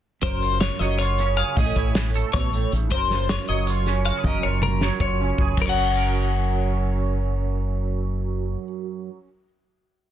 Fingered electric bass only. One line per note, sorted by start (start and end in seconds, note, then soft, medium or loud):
0.23 0.69 F#1 medium
0.80 1.42 F#1 medium
1.57 1.73 A1 medium
1.76 2.22 A1 medium
2.34 2.64 A1 medium
2.72 2.91 A1 medium
2.91 3.37 F#1 medium
3.49 4.10 F#1 medium
4.24 4.39 F#1 medium
4.44 4.89 F#1 medium
5.00 5.31 F#1 medium
5.39 5.54 F#1 medium
5.57 8.55 F#1 medium